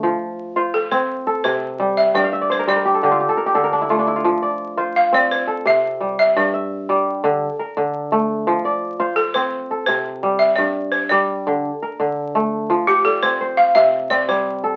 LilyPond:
<<
  \new Staff \with { instrumentName = "Balafon" } { \time 12/8 \key f \major \tempo 4. = 114 r2 a'8 c''4. c''4. e''8 | d''4 c''8 d''2 r2 r8 | r2 f''8 d''8 c''4 e''4. e''8 | d''1 r2 |
r2 a'8 c''4. c''4. e''8 | d''4 c''8 d''2 r2 r8 | r8 g'8 a'8 c''4 f''8 e''4 d''8 c''4. | }
  \new Staff \with { instrumentName = "Kora" } { \time 12/8 \key f \major r4. c''4. r8 a'4. r4 | g''16 f''16 e''16 d''16 c''16 bes'16 c''16 bes'16 g'16 a'16 g'16 f'16 g'16 a'16 bes'16 g'16 a'16 bes'16 d'16 e'16 f'16 d'16 e'16 f'16~ | f'16 r16 d''4 c''4. r8 a'4. r4 | r8 e''4 d''4. r8 bes'4. r4 |
r8 d''4 c''4. r8 a'4. r4 | r4. d''4. r8 bes'4. r4 | r8 g'8 d''4 c''4. r8 c'4. a'8 | }
  \new Staff \with { instrumentName = "Kora" } { \clef bass \time 12/8 \key f \major f4 r8 f'4 c'8 r4 c4 g4 | g,4 r8 g4 d8 r4 d4 a4 | f4 r8 f'4 c'8 r4 c4 g4 | g,4 r8 g4 d8 r4 d4 a4 |
f4 r8 f'4 c'8 r4 c4 g4 | g,4 r8 g4 d8 r4 d4 a4 | f4 r8 c'4 r8 c4 r8 g4 r8 | }
>>